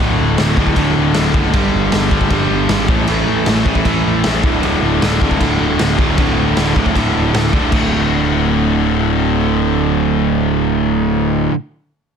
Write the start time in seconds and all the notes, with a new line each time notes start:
Already playing: D2 A2 D3
0.00 D1 D2 A2 D3
0.20 D1
0.38 D1 D2 A2 D3, snare, crash
0.57 D1 D2 A2 D3, kick
0.67 kick
0.76 D1 D2 A2 D3, kick, crash
0.97 D1
1.14 D1 D2 A2 D3, snare, crash
1.34 F#1 D2 A2 D3, kick
1.53 G1 G2 D3 G3, kick, crash
1.74 G1
1.92 G1 G2 D3 G3, snare, crash
2.11 G1 G2 D3 G3, kick
2.21 kick
2.30 G1 G2 D3 G3, kick, crash
2.50 G1
2.69 G#1 G2 D3 G3, snare, crash
2.88 A1 A2 E3 A3, kick
3.08 A1 A2 E3 A3, crash
3.28 A1
3.46 A1 A2 E3 A3, snare, crash
3.66 A1 A2 E3 A3, kick
3.75 kick
3.85 A1 A2 E3 A3, kick, crash
4.06 A1
4.24 A1 A2 E3 A3, snare, crash
4.43 D1 D2 A2 D3, kick
4.63 D1 D2 A2 D3, crash
4.83 D1
5.02 D1 D2 A2 D3, snare, crash
5.21 D1 D2 A2 D3, kick
5.25 D2
5.31 kick
5.41 D1 D2 A2 D3, kick, crash
5.60 D1
5.79 D1 D2 A2 D3, snare, crash
5.99 D1 D2 A2 D3, kick
6.17 D1 D2 A2 D3, kick, crash
6.37 D1
6.56 D1 D2 A2 D3, snare, crash
6.75 D1 D2 A2 D3, kick
6.80 D2
6.86 kick
6.95 D1 D2 A2 D3, kick, crash
7.15 D1
7.34 D1 D2 A2 D3, snare, crash
7.53 D1 D2 A2 D3, kick
7.72 D1 D2 A2 D3 A3 F#4, kick, crash